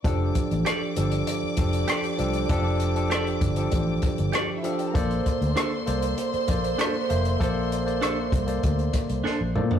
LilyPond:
<<
  \new Staff \with { instrumentName = "String section" } { \time 4/4 \key f \major \tempo 4 = 98 <d'' d'''>1~ | <d'' d'''>2.~ <d'' d'''>32 r32 <d' d''>32 <e' e''>32 <f' f''>32 <g' g''>32 <a' a''>32 <bes' bes''>32 | <c'' c'''>1~ | <c'' c'''>2.~ <c'' c'''>8 r8 | }
  \new Staff \with { instrumentName = "Clean electric guitar" } { \time 4/4 \key f \major r4 <g' a' d''>16 r4. r16 <g' a' d''>16 r8. | r4 <g' a' d''>16 r4. r16 <g' a' d''>16 r8. | r4 <d' a' c''>16 r4. r16 <d' a' c''>16 r8. | r4 <d' a' c''>16 r4. r16 <d' a' c''>16 r8. | }
  \new Staff \with { instrumentName = "Tine electric piano" } { \time 4/4 \key f \major <f d' g' a'>4 r8 <f d' g' a'>8 r8 <f d' g' a'>8 r8 <f d' g' a'>16 r16 | <f d' g' a'>8 r16 <f d' g' a'>8 r8 <f d' g' a'>4 r8. <f d' g' a'>16 r16 | <bes a' c'' d''>4 r8 <bes a' c'' d''>8 r8 <bes a' c'' d''>8 r8 <bes a' c'' e''>16 r16 | <bes a' c'' d''>8 r16 <bes a' c'' d''>8 r8 <bes a' c'' d''>4 r8. <bes a' c'' d''>16 r16 | }
  \new Staff \with { instrumentName = "Fingered electric bass" } { \clef bass \time 4/4 \key f \major f,,8 r16 a,,16 r8 g,,8 r8 f,,8 r8 c,8 | f,,4. g,,8 a,,8 r16 g,,16 r4 | bes,,8 r16 d,16 r8 c,8 r8 bes,,8 r8 f,,8 | bes,,4. c,8 d,8 r16 c,16 r16 bes,,16 bes,8 | }
  \new DrumStaff \with { instrumentName = "Drums" } \drummode { \time 4/4 <hh bd>8 <hh bd>16 hh16 <hh ss>8 hh16 hh16 hh8 <hh bd ss>16 hh16 <hh ss>16 hh16 hh16 hh16 | <hh bd>8 hh16 hh16 <hh ss>16 hh16 <hh bd>16 hh16 <hh bd>8 <hh bd>16 hh16 <hh ss>8 hh16 hh16 | <hh bd>16 hh16 <hh bd>16 hh16 <hh ss>8 hh16 hh16 hh16 hh16 <hh bd>16 hh16 <hh ss>8 hh16 hh16 | <hh bd>8 hh16 hh16 <hh ss>8 <hh bd>16 hh16 <hh bd>16 hh16 <hh bd ss>16 hh16 sn8 toml16 tomfh16 | }
>>